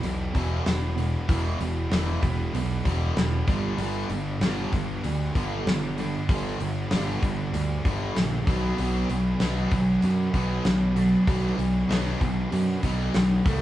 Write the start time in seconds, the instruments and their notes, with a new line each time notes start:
Already playing: distorted electric guitar E3 G3 B3 E4
0.03 picked electric bass B1, distorted electric guitar E2 B2, open hi-hat
0.35 picked electric bass E1, distorted electric guitar E2 B2 E3, kick, open hi-hat
0.66 picked electric bass E1, distorted electric guitar E2 B2, snare, open hi-hat
0.98 distorted electric guitar E2 B2, open hi-hat
1.27 picked electric bass E1, distorted electric guitar E2 B2 E3 G3 B3 E4, kick, open hi-hat
1.60 picked electric bass E1, distorted electric guitar E2 B2, open hi-hat
1.91 picked electric bass E1, distorted electric guitar E2 B2 E3, snare, open hi-hat
2.21 picked electric bass E1, distorted electric guitar E2 B2 E3 G3 B3 E4, kick, open hi-hat
2.53 picked electric bass B1, distorted electric guitar E2 B2, open hi-hat
2.85 picked electric bass E1, distorted electric guitar E2 B2 E3, kick, open hi-hat
3.16 picked electric bass E1, distorted electric guitar E2 B2, snare, open hi-hat
3.46 picked electric bass G1, distorted electric guitar G2 D3 G3 B3 D4, kick, open hi-hat
3.78 picked electric bass G1, distorted electric guitar G2 D3 G3, open hi-hat
4.09 picked electric bass G1, distorted electric guitar G2 D3, open hi-hat
4.41 picked electric bass G1, distorted electric guitar G2 D3 G3 B3 D4, snare, open hi-hat
4.72 picked electric bass G1, distorted electric guitar G2 D3, kick, open hi-hat
5.03 picked electric bass D2, distorted electric guitar G2 D3, open hi-hat
5.35 picked electric bass G1, distorted electric guitar G2 D3 G3, kick, open hi-hat
5.66 picked electric bass G1, distorted electric guitar G2 D3, snare, open hi-hat
5.96 distorted electric guitar G2 D3 G3 B3 D4, open hi-hat
6.29 picked electric bass G1, distorted electric guitar G2 D3 G3, kick, open hi-hat
6.60 picked electric bass G1, distorted electric guitar G2 D3, open hi-hat
6.91 picked electric bass G1, distorted electric guitar G2 D3 G3 B3 D4, snare, open hi-hat
7.22 picked electric bass G1, distorted electric guitar G2 D3, kick, open hi-hat
7.53 picked electric bass D2, distorted electric guitar G2 D3, open hi-hat
7.85 picked electric bass G1, distorted electric guitar G2 D3 G3, kick, open hi-hat
8.16 picked electric bass A#1, distorted electric guitar G2 D3, snare, open hi-hat
8.47 picked electric bass B1, distorted electric guitar B2 F#3 B3 D4, kick, open hi-hat
8.78 picked electric bass B1, distorted electric guitar B2 F#3 B3, open hi-hat
9.09 picked electric bass B1, distorted electric guitar B2 F#3, open hi-hat
9.40 picked electric bass B1, distorted electric guitar B2 F#3 B3 D4, snare, open hi-hat
9.71 picked electric bass B1, distorted electric guitar B2 F#3, kick, open hi-hat
10.02 picked electric bass F#2, distorted electric guitar B2 F#3, open hi-hat
10.34 picked electric bass B1, distorted electric guitar B2 F#3 B3, kick, open hi-hat
10.65 picked electric bass B1, distorted electric guitar B2 F#3, snare, open hi-hat
10.96 distorted electric guitar B2 F#3 B3 D4, open hi-hat
11.27 picked electric bass B1, distorted electric guitar B2 F#3 B3, kick, open hi-hat
11.58 picked electric bass B1, distorted electric guitar B2 F#3, open hi-hat
11.89 picked electric bass B1, distorted electric guitar B2 F#3 B3 D4, snare, open hi-hat
12.21 picked electric bass B1, distorted electric guitar B2 F#3, kick, open hi-hat
12.52 picked electric bass F#2, distorted electric guitar B2 F#3, open hi-hat
12.83 picked electric bass B1, distorted electric guitar B2 F#3 B3, kick, open hi-hat
13.14 picked electric bass B1, distorted electric guitar B2 F#3, snare, open hi-hat
13.45 picked electric bass C2, distorted electric guitar A2 C3 E3 A3 E4, kick, open hi-hat